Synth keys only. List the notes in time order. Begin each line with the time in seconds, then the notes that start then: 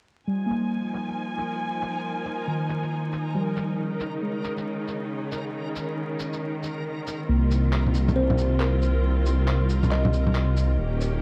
0.27 G3
0.46 A#3
2.47 D#3
3.34 F3 G3
4.22 G#3
7.29 A#3
8.16 C4
9.91 G3